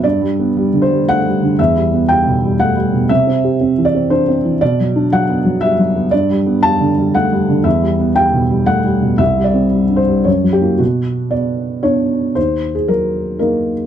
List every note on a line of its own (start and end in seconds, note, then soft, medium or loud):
0.03 1.54 G2 medium
0.03 0.81 D5 medium
0.21 0.49 G3 soft
0.39 0.67 B3 soft
0.57 0.84 G3 soft
0.73 1.00 D3 soft
0.82 1.07 C5 medium
0.91 1.18 G3 soft
1.09 1.25 A3 soft
1.09 1.59 F#5 medium
1.26 1.52 G3 soft
1.42 1.59 D3 soft
1.59 3.06 E2 medium
1.59 2.09 E5 medium
1.76 2.02 G3 soft
1.93 2.19 B3 soft
2.08 2.36 G3 soft
2.08 2.59 G5 medium
2.26 2.53 B2 soft
2.44 2.70 G3 soft
2.60 2.76 A3 soft
2.60 3.10 F#5 medium
2.76 3.03 G3 soft
2.93 3.10 B2 soft
3.09 4.57 C3 medium
3.09 3.85 E5 medium
3.27 3.54 C4 soft
3.44 3.71 G4 soft
3.61 3.87 C4 soft
3.78 4.04 E3 soft
3.85 4.10 D5 medium
3.95 4.21 C4 soft
4.10 4.27 D4 soft
4.10 4.36 C5 medium
4.28 4.54 C4 soft
4.45 4.61 E3 soft
4.61 6.08 B2 medium
4.61 5.11 D5 medium
4.80 5.05 F#3 soft
4.96 5.22 D4 soft
5.13 5.39 F#3 soft
5.13 5.62 F#5 medium
5.29 5.55 B3 soft
5.45 5.71 F#3 soft
5.61 5.78 G3 soft
5.61 6.12 E5 medium
5.79 6.05 F#3 medium
5.95 6.12 B3 soft
6.11 7.61 G2 medium
6.11 6.63 D5 medium
6.30 6.57 G3 soft
6.46 6.73 B3 soft
6.63 6.90 G3 soft
6.63 7.14 A5 loud
6.81 7.08 D3 soft
6.98 7.25 G3 soft
7.14 7.32 A3 soft
7.14 7.65 F#5 medium
7.32 7.59 G3 medium
7.49 7.65 D3 soft
7.64 9.15 E2 medium
7.64 8.15 E5 medium
7.82 8.09 G3 soft
7.99 8.26 B3 soft
8.16 8.43 G3 soft
8.16 8.67 G5 medium
8.33 8.60 B2 soft
8.50 8.78 G3 soft
8.66 8.85 A3 soft
8.66 9.19 F#5 medium
8.84 9.12 G3 soft
9.02 9.20 B2 soft
9.18 10.23 C2 medium
9.18 9.45 E5 medium
9.37 9.65 G3 soft
9.44 9.98 D5 medium
9.54 9.83 C4 soft
9.71 10.01 G3 soft
9.89 10.19 G2 soft
9.96 10.25 C5 medium
10.07 10.26 G3 soft
10.25 10.79 F#2 soft
10.25 10.80 C#5 medium
10.44 10.73 F#3 soft
10.53 10.80 G4 medium
10.61 10.78 A#3 soft
10.61 10.78 E4 soft
10.78 12.31 B2 soft
10.78 11.32 F#4 medium
11.31 11.82 B3 soft
11.31 11.83 D5 medium
11.83 12.32 B3 soft
11.83 12.32 D4 soft
11.83 12.35 C#5 medium
12.35 13.87 D#2 soft
12.35 12.74 C5 medium
12.75 12.88 G#4 medium
12.88 13.71 F#3 soft
12.88 13.38 A#4 medium
13.39 13.87 A#3 soft
13.39 13.87 D#4 soft
13.39 13.87 A#4 medium